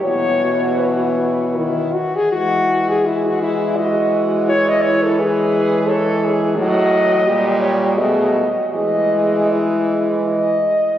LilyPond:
<<
  \new Staff \with { instrumentName = "French horn" } { \time 3/4 \key e \major \tempo 4 = 82 cis''4 b'4 e'8 fis'16 gis'16 | fis'8. gis'16 e'16 fis'16 e'8 dis''8. r16 | cis''16 dis''16 cis''16 a'16 b'4 cis''8 r8 | dis''4. cis''8 dis''4 |
dis''4 e'4 dis''4 | }
  \new Staff \with { instrumentName = "French horn" } { \time 3/4 \key e \major fis'2~ fis'8 r8 | r4 gis'4 fis'4 | e'4 gis'4 a'8 gis'8 | fis'4 g'4 gis'8 fis'8 |
gis'2~ gis'8 r8 | }
  \new Staff \with { instrumentName = "French horn" } { \clef bass \time 3/4 \key e \major e2 dis8 r8 | gis2.~ | gis2. | fis4 g4 a8 r8 |
gis2~ gis8 r8 | }
  \new Staff \with { instrumentName = "French horn" } { \clef bass \time 3/4 \key e \major b,2~ b,8 r8 | e2.~ | e2. | a,4 ais,4 b,8 r8 |
e2~ e8 r8 | }
>>